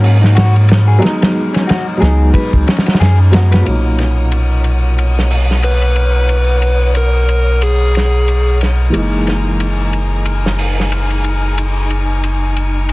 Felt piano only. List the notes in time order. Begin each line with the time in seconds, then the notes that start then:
Already playing: F#3 A#3 C#4 D#4 F#4
0.99 F#3 G#3
1.04 B3 D#4
1.97 F#3 G#3
2.03 B3 D#4
3.31 F#3 G#3 B3 F#4
3.62 A#2 F#3
3.67 C#4 D#4
8.90 E3 G#3
8.95 A#3 D#4